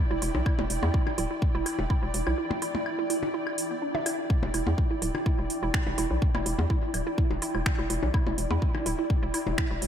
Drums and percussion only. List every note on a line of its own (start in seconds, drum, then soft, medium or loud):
0.22 open hi-hat medium
0.35 percussion blips medium
0.46 kick loud
0.46 claves medium
0.59 percussion blips medium
0.70 open hi-hat medium
0.83 percussion blips medium
0.94 kick loud
1.07 percussion blips medium
1.07 claves medium
1.18 open hi-hat medium
1.42 kick loud
1.66 open hi-hat medium
1.66 claves medium
1.79 percussion blips medium
1.90 kick medium
2.14 open hi-hat medium
2.27 claves medium
2.51 percussion blips medium
2.62 open hi-hat medium
2.75 percussion blips medium
2.86 claves medium
3.10 open hi-hat medium
3.23 percussion blips medium
3.47 claves medium
3.58 open hi-hat medium
3.95 percussion blips medium
4.06 open hi-hat medium
4.06 claves medium
4.30 kick loud
4.43 percussion blips medium
4.54 open hi-hat medium
4.54 claves medium
4.67 percussion blips loud
4.78 kick loud
5.02 open hi-hat medium
5.15 percussion blips medium
5.15 claves medium
5.26 kick loud
5.50 open hi-hat medium
5.74 finger snap loud
5.74 kick loud
5.74 claves medium
5.87 percussion blips medium
5.98 open hi-hat medium
6.22 kick loud
6.35 percussion blips loud
6.35 claves medium
6.46 open hi-hat medium
6.59 percussion blips medium
6.59 percussion blips loud
6.70 kick loud
6.94 open hi-hat medium
6.94 claves medium
7.18 kick loud
7.31 percussion blips medium
7.42 open hi-hat loud
7.55 claves medium
7.66 finger snap loud
7.66 kick loud
7.90 open hi-hat loud
8.03 percussion blips medium
8.14 kick loud
8.14 claves medium
8.27 percussion blips medium
8.38 open hi-hat medium
8.51 percussion blips medium
8.62 kick loud
8.75 percussion blips medium
8.75 claves medium
8.86 open hi-hat medium
9.10 kick loud
9.34 open hi-hat medium
9.34 claves medium
9.47 percussion blips medium
9.58 finger snap loud
9.58 kick loud
9.82 open hi-hat loud